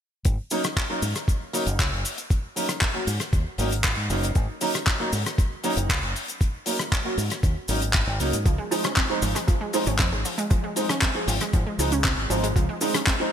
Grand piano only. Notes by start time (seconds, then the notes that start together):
0.51 F#3 A#3 C#4 D#4
0.89 F#3 A#3 C#4 D#4
1.53 F#3 A#3 C#4 D#4
2.56 F#3 A#3 C#4 D#4
2.94 F#3 A#3 C#4 F#4
3.58 F#3 A#3 C#4 D#4
4.10 F#3 A#3 C#4 D#4
4.61 F#3 A#3 C#4 D#4
5.00 F#3 A#3 C#4 D#4
5.64 F#3 A#3 C#4 D#4
6.66 F#3 A#3 C#4 D#4
7.04 F#3 A#3 C#4 F#4
7.68 F#3 A#3 C#4 D#4
8.20 F#3 A#3 C#4 D#4
8.71 F3 G#3 C4 D#4
9.10 F3 G#3 C4 D#4
9.74 F3 G#3 C4 D#4
10.76 F3 G#3 C4 D#4
11.15 F3 G#3 C4 G#4
11.79 F3 G#3 C4 D#4
12.30 F3 G#3 C4 D#4
12.81 F3 G#3 C4 D#4
13.20 F3 G#3 C4 D#4